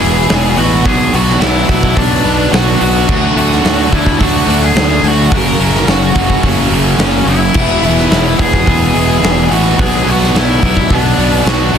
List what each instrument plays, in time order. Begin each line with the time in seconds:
Already playing: distorted electric guitar E3 G#3 B3 E4, lead electric guitar G#4 G#5, tonewheel organ B4 G#5 E6
0.00 fingered electric bass E1, distorted electric guitar E2 B2 E3 G#3 B3 E4, open hi-hat
0.27 fingered electric bass E1, distorted electric guitar E2 B2 E3 G#3 B3 E4, snare, open hi-hat
0.56 fingered electric bass A1, distorted electric guitar E2 B2 E3 G#3 B3 E4, lead electric guitar F#4 F#5, open hi-hat
0.85 fingered electric bass B1, distorted electric guitar B2 F#3 B3 D4, lead electric guitar G#4 G#5, tonewheel organ F#5, kick
1.13 fingered electric bass B1, distorted electric guitar B2 F#3 B3 D4, lead electric guitar F#4 F#5, open hi-hat
1.29 snare
1.40 fingered electric bass B1, distorted electric guitar B2 F#3 B3 D4, lead electric guitar E4 E5, snare, open hi-hat
1.68 fingered electric bass B1, distorted electric guitar B2 F#3 B3 D4, lead electric guitar E4 E5, kick, open hi-hat
1.83 kick
1.96 fingered electric bass B1, distorted electric guitar B2 F#3 B3 D4, lead electric guitar D4 D5, kick, open hi-hat
2.24 fingered electric bass B1, distorted electric guitar B2 F#3 B3 D4, open hi-hat
2.52 fingered electric bass B1, distorted electric guitar B2 F#3 B3 D4, lead electric guitar F#4 F#5, snare, open hi-hat
2.80 fingered electric bass B1, distorted electric guitar B2 F#3 B3 D4, lead electric guitar F#4 F#5, open hi-hat
3.08 fingered electric bass D2, distorted electric guitar D3 F#3 A3 D4, tonewheel organ A3, kick, crash
3.35 fingered electric bass D2, distorted electric guitar D3 F#3 A3 D4, lead electric guitar F#4 F#5, open hi-hat
3.52 snare
3.64 fingered electric bass D2, distorted electric guitar D3 F#3 A3 D4, snare, open hi-hat
3.91 fingered electric bass D2, distorted electric guitar D3 F#3 A3 D4, lead electric guitar E4 E5, kick, open hi-hat
4.06 kick
4.18 fingered electric bass D2, distorted electric guitar D3 F#3 A3 D4, kick, open hi-hat
4.22 lead electric guitar F#4 F#5
4.47 fingered electric bass D2, distorted electric guitar D3 F#3 A3 D4, open hi-hat
4.64 lead electric guitar G#4 G#5
4.75 fingered electric bass D2, distorted electric guitar D3 F#3 A3 D4, snare, open hi-hat
5.02 fingered electric bass D2, distorted electric guitar D3 F#3 A3 D4, open hi-hat
5.07 lead electric guitar F#4 F#5
5.30 fingered electric bass F#1, distorted electric guitar F#2 C#3 F#3 A#3 C#4, tonewheel organ A#4 F#5 C#6, lead electric guitar A#4, kick, open hi-hat
5.36 lead electric guitar A#5
5.58 fingered electric bass F#1, distorted electric guitar F#2 C#3 F#3 A#3 C#4, open hi-hat
5.75 snare
5.86 fingered electric bass F#1, distorted electric guitar F#2 C#3 F#3 A#3 C#4, lead electric guitar F#4 F#5, snare, open hi-hat
6.14 fingered electric bass F#1, distorted electric guitar F#2 C#3 F#3 A#3 C#4, kick, open hi-hat
6.30 kick
6.43 fingered electric bass F#1, distorted electric guitar F#2 C#3 F#3 A#3 C#4, kick, open hi-hat
6.70 fingered electric bass F#1, distorted electric guitar F#2 C#3 F#3 A#3 C#4, open hi-hat
6.98 fingered electric bass F#1, distorted electric guitar F#2 C#3 F#3 A#3 C#4, lead electric guitar C#4 C#5, snare, open hi-hat
7.26 fingered electric bass F#1, distorted electric guitar F#2 C#3 F#3 A#3 C#4, lead electric guitar E4 E5, open hi-hat
7.54 fingered electric bass E1, distorted electric guitar E2 B2 E3 G#3 B3 E4, tonewheel organ B4 G#5 E6, kick, crash
7.82 fingered electric bass E1, distorted electric guitar E2 B2 E3 G#3 B3 E4, open hi-hat
7.98 snare
8.10 fingered electric bass E1, distorted electric guitar E2 B2 E3 G#3 B3 E4, snare, open hi-hat
8.38 fingered electric bass E1, distorted electric guitar E2 B2 E3 G#3 B3 E4, lead electric guitar G#4 G#5, kick, open hi-hat
8.53 kick
8.65 fingered electric bass E1, distorted electric guitar E2 B2 E3 G#3 B3 E4, kick, open hi-hat
8.93 fingered electric bass E1, distorted electric guitar E2 B2 E3 G#3 B3 E4, open hi-hat
9.22 fingered electric bass E1, distorted electric guitar E2 B2 E3 G#3 B3 E4, snare, open hi-hat
9.49 fingered electric bass A1, distorted electric guitar E2 B2 E3 G#3 B3 E4, lead electric guitar F#4 F#5, open hi-hat
9.77 fingered electric bass B1, distorted electric guitar B2 F#3 B3 D4, tonewheel organ F#5 D6, kick
9.81 lead electric guitar G#4 G#5
10.04 fingered electric bass B1, distorted electric guitar B2 F#3 B3 D4, open hi-hat
10.11 lead electric guitar F#4 F#5
10.23 snare
10.33 fingered electric bass B1, distorted electric guitar B2 F#3 B3 D4, snare, open hi-hat
10.37 lead electric guitar E4 E5
10.60 fingered electric bass B1, distorted electric guitar B2 F#3 B3 D4, kick, open hi-hat
10.77 kick
10.88 fingered electric bass B1, distorted electric guitar B2 F#3 B3 D4, kick, open hi-hat
10.92 lead electric guitar D4 D5
11.17 fingered electric bass B1, distorted electric guitar B2 F#3 B3 D4, open hi-hat
11.34 lead electric guitar C#5
11.45 fingered electric bass B1, distorted electric guitar B2 F#3 B3 D4, lead electric guitar F#4 F#5, snare, open hi-hat
11.72 fingered electric bass B1, distorted electric guitar B2 F#3 B3 D4, open hi-hat